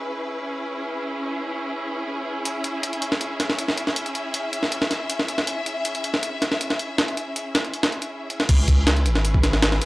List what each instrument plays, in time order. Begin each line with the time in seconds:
Already playing: string section C#4 E4 G#4 B4
2.45 string section E5, closed hi-hat
2.64 closed hi-hat
2.83 closed hi-hat
2.93 closed hi-hat
3.02 closed hi-hat
3.12 snare
3.21 closed hi-hat
3.40 snare, closed hi-hat
3.50 snare
3.59 closed hi-hat
3.68 snare
3.77 closed hi-hat
3.87 snare
3.96 closed hi-hat
4.06 closed hi-hat
4.15 closed hi-hat
4.34 closed hi-hat
4.53 closed hi-hat
4.63 snare
4.72 closed hi-hat
4.82 snare
4.91 snare, closed hi-hat
5.10 closed hi-hat
5.19 snare
5.28 closed hi-hat
5.38 snare
5.47 closed hi-hat
5.66 closed hi-hat
5.85 closed hi-hat
5.95 closed hi-hat
6.04 closed hi-hat
6.14 snare
6.23 closed hi-hat
6.42 snare, closed hi-hat
6.52 snare
6.61 closed hi-hat
6.70 snare
6.79 closed hi-hat
6.98 snare, closed hi-hat
7.08 closed hi-hat
7.17 closed hi-hat
7.36 closed hi-hat
7.55 snare, closed hi-hat
7.65 closed hi-hat
7.74 closed hi-hat
7.83 snare, closed hi-hat
7.92 closed hi-hat
8.02 closed hi-hat
8.30 closed hi-hat
8.40 snare
8.49 sub bass C#2, string section C#4 E4 G#4 B4, kick, closed hi-hat, crash
8.68 kick, closed hi-hat
8.87 snare, closed hi-hat
8.97 closed hi-hat
9.06 sub bass G#1, closed hi-hat
9.15 snare
9.25 closed hi-hat
9.34 kick
9.43 snare, closed hi-hat
9.53 snare
9.62 snare, closed hi-hat
9.72 snare
9.82 closed hi-hat